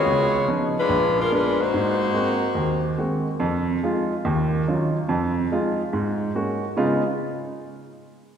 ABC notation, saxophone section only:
X:1
M:4/4
L:1/8
Q:"Swing" 1/4=143
K:Abdor
V:1 name="Saxophone section"
[CFAd]2 z [A,=DFc]2 [A,DFB] [A,DFc] [B,EG=c]- | [B,EG=c]6 z2 | z8 | z8 |
z8 |]